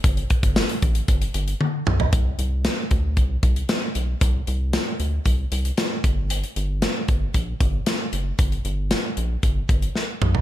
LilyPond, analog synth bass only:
\new Staff \with { instrumentName = "Analog synth bass" } { \clef bass \time 4/4 \key g \dorian \tempo 4 = 115 g,,8 r16 g,,8 r16 a,,8 g,,8 g,,8 r8 b,,8 | c,8 c,8. r16 d,8 c,8 c,8 r8 b,,8 | c,8 c,8. r16 d,8 c,8 c,8 r8 g,,8~ | g,,8 g,,8. r16 g,,8 bes,,8 g,,8 r8 fis,,8 |
g,,8 g,,8. r16 bes,,8 g,,8 g,,8 r8 b,,8 | }